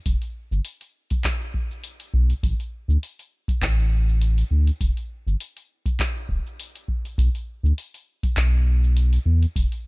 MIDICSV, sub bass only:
0, 0, Header, 1, 2, 480
1, 0, Start_track
1, 0, Key_signature, 1, "minor"
1, 0, Tempo, 594059
1, 47, Time_signature, 4, 2, 24, 8
1, 7977, End_track
2, 0, Start_track
2, 0, Title_t, "Sub bass"
2, 0, Program_c, 0, 38
2, 47, Note_on_c, 0, 28, 100
2, 129, Note_off_c, 0, 28, 0
2, 415, Note_on_c, 0, 31, 91
2, 486, Note_off_c, 0, 31, 0
2, 1727, Note_on_c, 0, 35, 94
2, 1886, Note_off_c, 0, 35, 0
2, 1965, Note_on_c, 0, 33, 98
2, 2048, Note_off_c, 0, 33, 0
2, 2330, Note_on_c, 0, 38, 96
2, 2403, Note_off_c, 0, 38, 0
2, 2925, Note_on_c, 0, 33, 94
2, 3581, Note_off_c, 0, 33, 0
2, 3642, Note_on_c, 0, 38, 78
2, 3804, Note_off_c, 0, 38, 0
2, 3884, Note_on_c, 0, 28, 101
2, 3968, Note_off_c, 0, 28, 0
2, 4255, Note_on_c, 0, 31, 93
2, 4326, Note_off_c, 0, 31, 0
2, 5082, Note_on_c, 0, 26, 86
2, 5167, Note_off_c, 0, 26, 0
2, 5803, Note_on_c, 0, 35, 104
2, 5887, Note_off_c, 0, 35, 0
2, 6169, Note_on_c, 0, 38, 103
2, 6243, Note_off_c, 0, 38, 0
2, 6763, Note_on_c, 0, 35, 85
2, 7420, Note_off_c, 0, 35, 0
2, 7479, Note_on_c, 0, 40, 87
2, 7642, Note_off_c, 0, 40, 0
2, 7722, Note_on_c, 0, 28, 102
2, 7807, Note_off_c, 0, 28, 0
2, 7977, End_track
0, 0, End_of_file